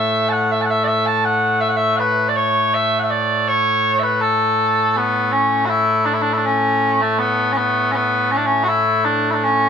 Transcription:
Already playing: A2 A3 E5
0.29 F#5 A5
0.51 E5
0.61 F#5 A5
0.70 E5
0.84 D5 E5
1.06 A5
1.25 F#5
1.61 E5
1.69 F#5
1.76 E5
1.96 B4 F#5
2.29 D5
2.36 C#5
2.74 E5
2.99 F#5
3.04 E5
3.10 D5
3.48 C#5
3.99 B4 E5
4.21 A4
4.97 B3
5.32 C#4
5.66 E4 F#4
6.05 D4
6.14 E4
6.22 D4
6.33 E4
6.37 D4
6.46 C#4
7.01 A3
7.18 B3
7.52 C#4
7.57 B3
7.92 B3 C#4
8.31 C#4
8.37 D4
8.46 C#4
8.64 F#4
8.68 E4
9.05 D4
9.31 D4 E4
9.44 C#4

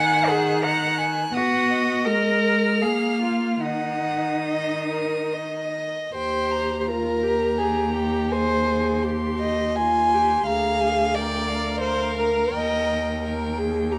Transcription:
Already playing: D#3 F#5 G#5 F#6
0.28 G#4 F#5
0.63 F#5 A#5 F#6
0.98 G#5
1.32 B3 F#4 F#5 D#6
1.70 D#5
2.05 G#3 A#4 F6
2.81 A#3 G#4 F5
3.21 F4
3.62 D#3 D#4 F#5 D#6
4.46 D#5
4.89 A#4
5.34 D#5
6.14 D#2 G4 C5 G5
6.51 A#5
6.81 C5
6.87 F4 A#4 A#5
7.23 G4
7.58 G#4
7.95 G4
8.31 G#4 C5 G#5
8.67 G#4
9.03 G4 C6
9.40 D#5
9.76 F4 G#5 C6
10.14 G4
10.47 D2 G#4 F5 A#5
10.80 G#5
11.14 A#4 D5 G5
11.48 F5
11.81 C5
12.17 A#4
12.54 D#2 D#5 G5
13.24 A#4 G5
13.58 G#4
13.92 G4 A#5

